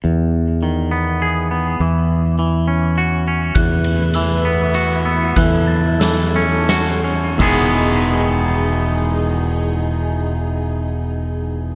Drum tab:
CC |------|------|------|------|
RD |------|------|xxx-x-|x-x-x-|
SD |------|------|------|--o-o-|
BD |------|------|o-----|o-----|

CC |x-----|------|
RD |------|------|
SD |------|------|
BD |o-----|------|